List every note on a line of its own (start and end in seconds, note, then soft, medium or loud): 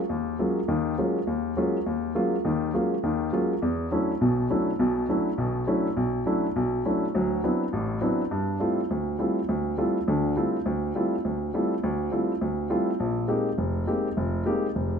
0.10 0.35 D#2 medium
0.39 0.58 F#3 soft
0.39 0.58 G#3 soft
0.39 0.58 A#3 soft
0.39 0.59 C#4 soft
0.39 0.59 F4 medium
0.68 0.93 D#2 medium
0.68 0.94 D#3 medium
0.98 1.17 F#3 soft
0.98 1.17 G#3 soft
0.98 1.17 A#3 soft
0.98 1.17 C#4 soft
0.98 1.18 F4 soft
1.27 1.52 D#2 medium
1.57 1.76 F#3 soft
1.57 1.76 G#3 soft
1.57 1.76 A#3 soft
1.57 1.76 C#4 soft
1.57 1.77 F4 medium
1.86 2.11 D#2 medium
2.15 2.34 F#3 soft
2.15 2.35 G#3 soft
2.15 2.35 A#3 soft
2.15 2.35 C#4 soft
2.15 2.35 F4 medium
2.45 2.70 D#2 medium
2.45 2.70 D#3 medium
2.74 2.93 F#3 soft
2.74 2.93 G#3 soft
2.74 2.94 A#3 soft
2.74 2.94 C#4 soft
2.74 2.94 F4 soft
3.04 3.29 D#2 medium
3.04 3.29 D#3 medium
3.33 3.52 F#3 soft
3.33 3.52 G#3 soft
3.33 3.52 A#3 soft
3.33 3.52 C#4 soft
3.33 3.53 F4 medium
3.62 3.87 E2 medium
3.91 4.11 F#3 soft
3.91 4.11 A3 soft
3.91 4.11 C#4 soft
3.91 4.11 D4 soft
3.91 4.12 E4 medium
4.21 4.46 B1 medium
4.21 4.46 B2 medium
4.50 4.70 F#3 soft
4.50 4.70 A3 soft
4.50 4.70 C#4 soft
4.50 4.70 D4 soft
4.50 4.70 E4 medium
4.79 5.05 B1 medium
4.79 5.05 B2 medium
5.09 5.28 F#3 medium
5.09 5.28 A3 soft
5.09 5.29 C#4 soft
5.09 5.29 D4 soft
5.09 5.29 E4 medium
5.38 5.63 B1 medium
5.38 5.63 B2 medium
5.67 5.87 F#3 soft
5.67 5.87 A3 soft
5.67 5.87 C#4 soft
5.67 5.87 D4 soft
5.67 5.87 E4 medium
5.97 6.22 B1 medium
6.26 6.45 F#3 medium
6.26 6.45 A3 soft
6.26 6.45 C#4 soft
6.26 6.46 D4 soft
6.26 6.46 E4 medium
6.56 6.81 B1 medium
6.85 7.04 F#3 soft
6.85 7.04 A3 soft
6.85 7.04 C#4 soft
6.85 7.05 D4 soft
6.85 7.04 E4 medium
7.15 7.39 D2 medium
7.15 7.39 F#3 medium
7.43 7.63 F#3 soft
7.43 7.63 B3 soft
7.43 7.63 C4 soft
7.43 7.63 D4 soft
7.43 7.63 E4 medium
7.73 7.98 A1 medium
7.73 7.98 A2 medium
8.01 8.21 F#3 soft
8.01 8.21 B3 soft
8.01 8.21 C4 soft
8.01 8.21 D4 soft
8.01 8.21 E4 medium
8.31 8.56 G2 medium
8.60 8.79 G3 soft
8.60 8.79 A3 soft
8.60 8.80 C4 soft
8.60 8.80 E4 soft
8.60 8.80 F4 medium
8.91 9.15 D2 medium
9.19 9.38 G3 soft
9.19 9.38 A3 soft
9.19 9.38 C4 soft
9.19 9.38 E4 soft
9.19 9.39 F4 soft
9.49 9.73 D2 medium
9.78 9.97 G3 soft
9.78 9.97 A3 soft
9.78 9.97 C4 soft
9.78 9.97 E4 soft
9.78 9.97 F4 soft
10.08 10.32 D2 medium
10.08 10.32 D3 medium
10.37 10.56 G3 soft
10.37 10.56 A3 soft
10.37 10.56 C4 soft
10.37 10.56 E4 soft
10.37 10.56 F4 soft
10.66 10.91 D2 medium
10.95 11.14 G3 medium
10.95 11.14 A3 soft
10.95 11.15 C4 soft
10.95 11.15 E4 soft
10.95 11.15 F4 medium
11.25 11.49 D2 medium
11.54 11.73 G3 medium
11.54 11.73 A3 soft
11.54 11.73 C4 soft
11.54 11.73 E4 soft
11.54 11.73 F4 soft
11.83 12.08 D2 medium
12.11 12.31 G3 soft
12.11 12.31 A3 soft
12.11 12.31 C4 soft
12.11 12.31 E4 soft
12.11 12.31 F4 medium
12.41 12.66 D2 medium
12.70 12.89 G3 soft
12.70 12.90 A3 soft
12.70 12.90 C4 soft
12.70 12.90 E4 soft
12.70 12.90 F4 medium
13.00 13.25 A#1 medium
13.28 13.48 G#3 soft
13.28 13.48 A#3 soft
13.28 13.48 C4 soft
13.28 13.48 D#4 soft
13.28 13.48 G4 soft
13.58 13.83 F1 medium
13.87 14.07 G#3 soft
13.87 14.07 A#3 soft
13.87 14.07 C4 soft
13.87 14.07 D#4 soft
13.87 14.07 G4 soft
14.17 14.42 F1 medium
14.46 14.65 G#3 medium
14.46 14.65 A#3 soft
14.46 14.65 C4 soft
14.46 14.66 D#4 soft
14.46 14.66 G4 medium
14.75 14.99 F1 medium